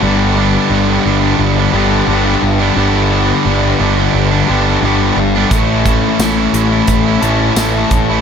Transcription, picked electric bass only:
0, 0, Header, 1, 2, 480
1, 0, Start_track
1, 0, Tempo, 685714
1, 22, Time_signature, 4, 2, 24, 8
1, 5748, End_track
2, 0, Start_track
2, 0, Title_t, "Picked electric bass"
2, 0, Program_c, 0, 34
2, 16, Note_on_c, 0, 31, 86
2, 399, Note_off_c, 0, 31, 0
2, 491, Note_on_c, 0, 31, 77
2, 685, Note_off_c, 0, 31, 0
2, 740, Note_on_c, 0, 31, 79
2, 930, Note_off_c, 0, 31, 0
2, 974, Note_on_c, 0, 31, 83
2, 1166, Note_off_c, 0, 31, 0
2, 1211, Note_on_c, 0, 31, 78
2, 1405, Note_off_c, 0, 31, 0
2, 1454, Note_on_c, 0, 31, 80
2, 1646, Note_off_c, 0, 31, 0
2, 1698, Note_on_c, 0, 31, 78
2, 1889, Note_off_c, 0, 31, 0
2, 1933, Note_on_c, 0, 31, 82
2, 2316, Note_off_c, 0, 31, 0
2, 2420, Note_on_c, 0, 31, 80
2, 2610, Note_off_c, 0, 31, 0
2, 2659, Note_on_c, 0, 31, 75
2, 2849, Note_off_c, 0, 31, 0
2, 2900, Note_on_c, 0, 31, 86
2, 3090, Note_off_c, 0, 31, 0
2, 3147, Note_on_c, 0, 31, 75
2, 3334, Note_off_c, 0, 31, 0
2, 3377, Note_on_c, 0, 31, 84
2, 3568, Note_off_c, 0, 31, 0
2, 3615, Note_on_c, 0, 31, 82
2, 3807, Note_off_c, 0, 31, 0
2, 3858, Note_on_c, 0, 33, 85
2, 4239, Note_off_c, 0, 33, 0
2, 4334, Note_on_c, 0, 33, 78
2, 4527, Note_off_c, 0, 33, 0
2, 4575, Note_on_c, 0, 33, 78
2, 4767, Note_off_c, 0, 33, 0
2, 4818, Note_on_c, 0, 33, 86
2, 5009, Note_off_c, 0, 33, 0
2, 5055, Note_on_c, 0, 33, 81
2, 5248, Note_off_c, 0, 33, 0
2, 5296, Note_on_c, 0, 33, 88
2, 5489, Note_off_c, 0, 33, 0
2, 5535, Note_on_c, 0, 33, 79
2, 5728, Note_off_c, 0, 33, 0
2, 5748, End_track
0, 0, End_of_file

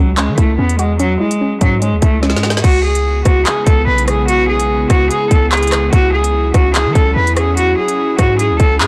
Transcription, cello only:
0, 0, Header, 1, 2, 480
1, 0, Start_track
1, 0, Key_signature, 4, "minor"
1, 0, Tempo, 410959
1, 1163, Time_signature, 4, 2, 24, 8
1, 10362, End_track
2, 0, Start_track
2, 0, Title_t, "Cello"
2, 0, Program_c, 0, 42
2, 0, Note_on_c, 0, 54, 78
2, 189, Note_off_c, 0, 54, 0
2, 205, Note_on_c, 0, 56, 84
2, 427, Note_off_c, 0, 56, 0
2, 447, Note_on_c, 0, 57, 82
2, 668, Note_off_c, 0, 57, 0
2, 686, Note_on_c, 0, 59, 82
2, 908, Note_off_c, 0, 59, 0
2, 927, Note_on_c, 0, 56, 80
2, 1148, Note_off_c, 0, 56, 0
2, 1166, Note_on_c, 0, 54, 100
2, 1387, Note_off_c, 0, 54, 0
2, 1409, Note_on_c, 0, 56, 81
2, 1858, Note_off_c, 0, 56, 0
2, 1888, Note_on_c, 0, 54, 96
2, 2109, Note_off_c, 0, 54, 0
2, 2129, Note_on_c, 0, 56, 88
2, 2349, Note_off_c, 0, 56, 0
2, 2363, Note_on_c, 0, 57, 93
2, 2586, Note_off_c, 0, 57, 0
2, 2605, Note_on_c, 0, 56, 90
2, 3055, Note_off_c, 0, 56, 0
2, 3083, Note_on_c, 0, 66, 96
2, 3306, Note_off_c, 0, 66, 0
2, 3324, Note_on_c, 0, 68, 82
2, 3775, Note_off_c, 0, 68, 0
2, 3799, Note_on_c, 0, 66, 84
2, 4024, Note_off_c, 0, 66, 0
2, 4048, Note_on_c, 0, 68, 80
2, 4269, Note_off_c, 0, 68, 0
2, 4284, Note_on_c, 0, 69, 84
2, 4507, Note_off_c, 0, 69, 0
2, 4528, Note_on_c, 0, 71, 83
2, 4749, Note_off_c, 0, 71, 0
2, 4765, Note_on_c, 0, 68, 83
2, 4987, Note_off_c, 0, 68, 0
2, 5005, Note_on_c, 0, 66, 106
2, 5227, Note_off_c, 0, 66, 0
2, 5244, Note_on_c, 0, 68, 87
2, 5695, Note_off_c, 0, 68, 0
2, 5730, Note_on_c, 0, 66, 99
2, 5950, Note_off_c, 0, 66, 0
2, 5965, Note_on_c, 0, 68, 96
2, 6187, Note_off_c, 0, 68, 0
2, 6201, Note_on_c, 0, 69, 91
2, 6425, Note_off_c, 0, 69, 0
2, 6441, Note_on_c, 0, 68, 89
2, 6893, Note_off_c, 0, 68, 0
2, 6926, Note_on_c, 0, 66, 103
2, 7148, Note_off_c, 0, 66, 0
2, 7159, Note_on_c, 0, 68, 80
2, 7612, Note_off_c, 0, 68, 0
2, 7648, Note_on_c, 0, 66, 82
2, 7869, Note_off_c, 0, 66, 0
2, 7884, Note_on_c, 0, 68, 88
2, 8107, Note_off_c, 0, 68, 0
2, 8127, Note_on_c, 0, 69, 85
2, 8348, Note_off_c, 0, 69, 0
2, 8363, Note_on_c, 0, 71, 83
2, 8586, Note_off_c, 0, 71, 0
2, 8602, Note_on_c, 0, 68, 85
2, 8825, Note_off_c, 0, 68, 0
2, 8843, Note_on_c, 0, 66, 105
2, 9066, Note_off_c, 0, 66, 0
2, 9085, Note_on_c, 0, 68, 84
2, 9535, Note_off_c, 0, 68, 0
2, 9566, Note_on_c, 0, 66, 99
2, 9788, Note_off_c, 0, 66, 0
2, 9807, Note_on_c, 0, 68, 90
2, 10028, Note_off_c, 0, 68, 0
2, 10043, Note_on_c, 0, 69, 95
2, 10266, Note_off_c, 0, 69, 0
2, 10284, Note_on_c, 0, 68, 93
2, 10362, Note_off_c, 0, 68, 0
2, 10362, End_track
0, 0, End_of_file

